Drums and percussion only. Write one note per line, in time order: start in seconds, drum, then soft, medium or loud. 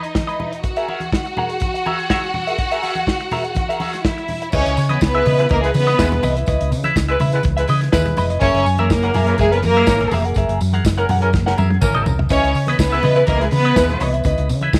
0.03 closed hi-hat soft
0.15 kick loud
0.15 snare loud
0.15 muted conga soft
0.15 high conga medium
0.29 closed hi-hat soft
0.40 muted conga soft
0.40 high conga medium
0.40 low conga medium
0.53 closed hi-hat soft
0.64 kick medium
0.64 closed hi-hat medium
0.76 closed hi-hat soft
0.89 muted conga soft
1.00 closed hi-hat soft
1.00 high conga medium
1.12 kick loud
1.12 snare loud
1.25 closed hi-hat soft
1.37 high conga medium
1.37 low conga medium
1.50 closed hi-hat soft
1.60 kick loud
1.60 closed hi-hat medium
1.60 high conga medium
1.75 closed hi-hat medium
1.86 high conga medium
1.99 closed hi-hat soft
2.10 kick loud
2.10 snare loud
2.10 muted conga soft
2.10 high conga medium
2.24 closed hi-hat soft
2.34 high conga medium
2.34 low conga medium
2.48 closed hi-hat medium
2.58 kick loud
2.58 closed hi-hat medium
2.58 muted conga soft
2.71 closed hi-hat soft
2.83 open hi-hat medium
2.83 muted conga soft
2.95 closed hi-hat soft
2.95 high conga medium
3.07 kick medium
3.07 snare medium
3.07 muted conga soft
3.20 closed hi-hat soft
3.31 open hi-hat medium
3.31 high conga medium
3.31 low conga medium
3.45 closed hi-hat soft
3.55 kick loud
3.55 closed hi-hat medium
3.55 muted conga soft
3.55 high conga medium
3.70 closed hi-hat soft
3.80 open hi-hat medium
3.80 muted conga soft
3.80 high conga medium
3.93 snare soft
3.93 closed hi-hat soft
4.05 kick loud
4.05 snare loud
4.05 high conga medium
4.18 closed hi-hat soft
4.28 open hi-hat medium
4.28 high conga medium
4.28 low conga medium
4.42 closed hi-hat medium
4.52 kick loud
4.52 crash loud
4.52 tambourine medium
4.52 muted conga soft
4.66 closed hi-hat medium
4.77 open hi-hat medium
4.77 tambourine medium
4.89 closed hi-hat soft
4.89 high conga medium
5.01 kick loud
5.01 snare loud
5.01 tambourine medium
5.01 muted conga soft
5.14 closed hi-hat soft
5.26 open hi-hat medium
5.26 muted conga soft
5.26 high conga medium
5.26 low conga medium
5.39 closed hi-hat medium
5.49 kick loud
5.49 closed hi-hat medium
5.49 high conga medium
5.64 closed hi-hat medium
5.74 open hi-hat medium
5.74 tambourine medium
5.74 muted conga soft
5.74 high conga medium
5.88 snare soft
5.88 closed hi-hat soft
5.99 kick loud
5.99 snare loud
5.99 tambourine medium
5.99 muted conga soft
5.99 high conga medium
6.12 closed hi-hat soft
6.12 low conga medium
6.23 open hi-hat medium
6.23 tambourine medium
6.23 muted conga soft
6.23 high conga medium
6.23 low conga medium
6.37 closed hi-hat medium
6.46 kick loud
6.46 closed hi-hat medium
6.46 tambourine medium
6.61 closed hi-hat medium
6.72 open hi-hat medium
6.72 tambourine medium
6.72 muted conga soft
6.84 closed hi-hat medium
6.84 high conga medium
6.96 kick loud
6.96 snare loud
6.96 tambourine loud
6.96 muted conga soft
7.08 closed hi-hat soft
7.19 open hi-hat medium
7.19 tambourine soft
7.19 high conga medium
7.19 low conga medium
7.32 closed hi-hat medium
7.43 kick loud
7.43 closed hi-hat medium
7.43 tambourine soft
7.43 muted conga soft
7.43 high conga medium
7.58 closed hi-hat medium
7.68 open hi-hat medium
7.68 tambourine medium
7.68 high conga medium
7.81 snare soft
7.81 closed hi-hat soft
7.93 kick loud
7.93 snare loud
7.93 tambourine medium
7.93 muted conga soft
7.93 high conga medium
8.06 closed hi-hat soft
8.06 low conga medium
8.16 open hi-hat medium
8.16 tambourine medium
8.16 muted conga soft
8.16 high conga medium
8.16 low conga medium
8.30 closed hi-hat medium
8.41 kick loud
8.41 closed hi-hat medium
8.41 tambourine medium
8.41 muted conga soft
8.54 closed hi-hat soft
8.66 open hi-hat medium
8.66 tambourine medium
8.78 closed hi-hat soft
8.78 high conga medium
8.90 kick loud
8.90 snare loud
8.90 tambourine medium
9.03 closed hi-hat soft
9.14 open hi-hat medium
9.14 tambourine soft
9.14 high conga medium
9.14 low conga medium
9.27 closed hi-hat medium
9.38 kick loud
9.38 closed hi-hat medium
9.38 tambourine soft
9.38 high conga medium
9.52 closed hi-hat medium
9.62 open hi-hat medium
9.62 tambourine medium
9.62 high conga medium
9.76 closed hi-hat soft
9.87 kick loud
9.87 snare loud
9.87 tambourine medium
9.87 muted conga soft
9.87 high conga medium
10.00 closed hi-hat soft
10.00 low conga medium
10.11 open hi-hat medium
10.11 tambourine medium
10.11 muted conga soft
10.11 high conga medium
10.11 low conga medium
10.25 closed hi-hat medium
10.34 kick loud
10.34 closed hi-hat medium
10.34 tambourine medium
10.34 muted conga soft
10.49 closed hi-hat soft
10.61 open hi-hat medium
10.61 tambourine medium
10.61 muted conga soft
10.73 closed hi-hat soft
10.73 high conga medium
10.85 kick loud
10.85 snare loud
10.85 tambourine medium
10.85 muted conga soft
10.98 closed hi-hat soft
11.09 open hi-hat medium
11.09 tambourine soft
11.09 muted conga soft
11.09 high conga medium
11.09 low conga loud
11.22 closed hi-hat medium
11.33 kick loud
11.33 snare medium
11.33 tambourine soft
11.33 high conga medium
11.47 snare medium
11.58 high tom medium
11.58 tambourine medium
11.58 muted conga soft
11.58 high conga medium
11.70 high tom medium
11.81 kick loud
11.81 mid tom loud
11.81 tambourine medium
11.81 muted conga soft
11.81 high conga medium
11.95 mid tom medium
11.95 low conga medium
12.06 floor tom loud
12.06 tambourine medium
12.06 high conga medium
12.06 low conga medium
12.19 floor tom loud
12.29 kick loud
12.29 closed hi-hat medium
12.29 tambourine medium
12.44 closed hi-hat medium
12.55 open hi-hat medium
12.55 tambourine medium
12.67 closed hi-hat soft
12.67 high conga medium
12.79 kick loud
12.79 snare loud
12.79 tambourine medium
12.79 muted conga soft
12.91 closed hi-hat soft
13.03 open hi-hat medium
13.03 tambourine soft
13.03 muted conga soft
13.03 high conga medium
13.03 low conga medium
13.16 closed hi-hat medium
13.27 kick loud
13.27 closed hi-hat medium
13.27 tambourine soft
13.27 muted conga soft
13.27 high conga medium
13.41 closed hi-hat medium
13.51 open hi-hat medium
13.51 tambourine medium
13.51 high conga medium
13.65 closed hi-hat soft
13.76 kick loud
13.76 snare loud
13.76 tambourine medium
13.76 high conga medium
13.90 closed hi-hat soft
13.90 low conga medium
14.00 open hi-hat medium
14.00 tambourine medium
14.00 muted conga soft
14.00 high conga medium
14.00 low conga medium
14.14 closed hi-hat medium
14.24 kick loud
14.24 closed hi-hat medium
14.24 tambourine medium
14.24 muted conga soft
14.38 closed hi-hat medium
14.49 open hi-hat medium
14.49 tambourine medium
14.61 closed hi-hat soft
14.61 high conga medium
14.73 kick loud
14.73 snare loud
14.73 tambourine medium
14.73 muted conga soft